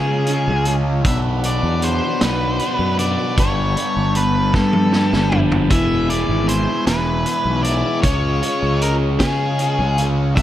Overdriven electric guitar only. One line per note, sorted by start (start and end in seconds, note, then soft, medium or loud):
0.00 0.27 C#3 medium
0.00 0.28 G#3 medium
0.00 0.29 C#4 medium
0.00 0.29 F4 medium
0.28 1.03 C#3 medium
0.28 0.67 G#3 medium
0.28 0.66 C#4 medium
0.28 0.65 F4 medium
0.66 1.04 G#3 medium
0.66 1.03 C#4 medium
0.66 1.03 F4 medium
1.05 1.83 B2 medium
1.05 1.45 F#3 medium
1.05 1.45 B3 medium
1.05 1.43 D4 medium
1.44 2.22 F#3 medium
1.44 2.22 B3 medium
1.44 2.21 D4 medium
2.22 2.59 B2 medium
2.22 2.60 F#3 medium
2.22 2.62 B3 medium
2.22 2.61 D4 medium
2.60 3.36 B2 medium
2.60 3.00 F#3 medium
2.60 3.00 B3 medium
2.60 2.97 D4 medium
2.99 3.37 F#3 medium
2.99 3.39 B3 medium
2.99 3.36 D4 medium
3.37 4.15 G2 medium
3.37 4.16 D3 medium
3.37 3.78 G3 medium
3.37 3.77 B3 medium
3.37 3.75 D4 medium
3.76 4.53 G3 medium
3.76 4.53 B3 medium
3.76 4.52 D4 medium
4.53 5.33 G2 medium
4.53 4.91 D3 medium
4.53 4.92 G3 medium
4.53 4.93 B3 medium
4.53 4.94 D4 medium
4.92 5.68 D3 medium
4.92 5.33 G3 medium
4.92 5.32 B3 medium
4.92 5.30 D4 medium
5.31 5.70 G3 soft
5.31 5.69 B3 medium
5.31 5.69 D4 medium
5.70 6.48 E3 medium
5.70 6.11 G#3 medium
5.70 6.09 B3 medium
5.70 6.08 E4 medium
6.09 6.87 G#3 medium
6.09 6.86 B3 medium
6.09 6.85 E4 medium
6.86 7.24 E3 medium
6.86 7.25 G#3 medium
6.86 7.26 B3 medium
6.86 7.27 E4 medium
7.25 8.02 E3 medium
7.25 7.66 G#3 medium
7.25 7.65 B3 medium
7.25 7.64 E4 medium
7.65 8.03 G#3 medium
7.65 8.03 B3 medium
7.65 8.02 E4 medium
8.03 8.82 C#3 medium
8.03 8.43 G#3 medium
8.03 8.42 C#4 medium
8.03 8.41 F4 medium
8.42 9.20 G#3 medium
8.42 9.19 C#4 medium
8.42 9.18 F4 medium
9.19 9.56 C#3 medium
9.19 9.57 G#3 medium
9.19 9.58 C#4 medium
9.19 9.59 F4 medium
9.58 10.34 C#3 medium
9.58 9.99 G#3 medium
9.58 9.98 C#4 medium
9.58 9.96 F4 medium
9.97 10.36 G#3 medium
9.97 10.35 C#4 medium
9.97 10.35 F4 medium
10.37 10.42 B2 medium
10.37 10.42 F#3 medium
10.37 10.42 B3 medium
10.37 10.42 D4 medium